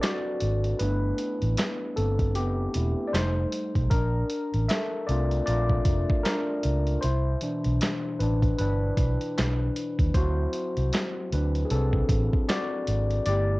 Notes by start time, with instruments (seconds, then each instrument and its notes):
Already playing: tine electric piano C4 D4 A4 B4
0.01 tine electric piano F#4 D5, snare, clap, closed hi-hat
0.41 fingered electric bass G#1, closed hi-hat
0.64 closed hi-hat
0.79 fingered electric bass G1, tine electric piano A3 B3 D4 E4 B4, closed hi-hat
1.18 closed hi-hat
1.42 fingered electric bass A1, closed hi-hat
1.57 snare, clap, closed hi-hat
1.96 fingered electric bass G1, tine electric piano C4 A4, closed hi-hat
2.19 kick, closed hi-hat
2.35 fingered electric bass F#1, tine electric piano B3 G4, closed hi-hat
2.74 fingered electric bass E1, tine electric piano A3 B3 E4, closed hi-hat
3.07 tine electric piano D5
3.13 fingered electric bass F1, tine electric piano G3 A3 D#4 C5, snare, clap, closed hi-hat
3.52 closed hi-hat
3.75 fingered electric bass B1, kick, closed hi-hat
3.90 fingered electric bass A#1, tine electric piano D4 A#4, kick, closed hi-hat
4.30 closed hi-hat
4.54 fingered electric bass A1, closed hi-hat
4.68 tine electric piano A4 E5, snare, clap, closed hi-hat
5.06 fingered electric bass C2, tine electric piano A3 C4 D4 D5, closed hi-hat
5.10 tine electric piano F4
5.31 closed hi-hat
5.46 fingered electric bass A#1, tine electric piano F4 D5, closed hi-hat
5.69 kick
5.85 fingered electric bass F1, kick, closed hi-hat
6.10 kick
6.23 tine electric piano D4 A#4, snare, clap, closed hi-hat
6.63 fingered electric bass C#2, closed hi-hat
6.87 closed hi-hat
7.01 fingered electric bass C2, tine electric piano E4 C5, closed hi-hat
7.41 tine electric piano B2 E3 D4, closed hi-hat
7.64 fingered electric bass B1, closed hi-hat
7.81 snare, clap, closed hi-hat
8.19 fingered electric bass A1, tine electric piano D4 B4, closed hi-hat
8.42 kick, closed hi-hat
8.58 fingered electric bass G1, tine electric piano D4 B4, closed hi-hat
8.97 fingered electric bass B1, kick, closed hi-hat
9.21 closed hi-hat
9.38 fingered electric bass B1, snare, clap, closed hi-hat
9.76 closed hi-hat
9.99 fingered electric bass D#2, kick, closed hi-hat
10.14 fingered electric bass D2, tine electric piano F#3 C4 E4 F#4 C5, kick, closed hi-hat
10.53 closed hi-hat
10.77 fingered electric bass C2, closed hi-hat
10.93 snare, clap, closed hi-hat
11.32 fingered electric bass D2, tine electric piano D4 B4, closed hi-hat
11.55 closed hi-hat
11.65 tine electric piano G#4
11.70 fingered electric bass C2, tine electric piano C4 A4, closed hi-hat
11.93 kick
12.09 fingered electric bass A1, kick, closed hi-hat
12.33 kick
12.49 tine electric piano F#4 D5, snare, clap, closed hi-hat
12.87 fingered electric bass G#1, closed hi-hat
13.11 closed hi-hat
13.26 fingered electric bass G1, tine electric piano A3 B3 E4 G4 D5, closed hi-hat